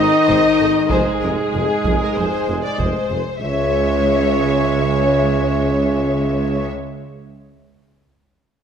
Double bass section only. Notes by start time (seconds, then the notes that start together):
0.29 G#1
0.60 G#1
0.91 F1
1.23 F1
1.54 F1
1.85 F1
2.16 F1
2.48 F1
2.78 F1
3.10 F1
3.41 C#2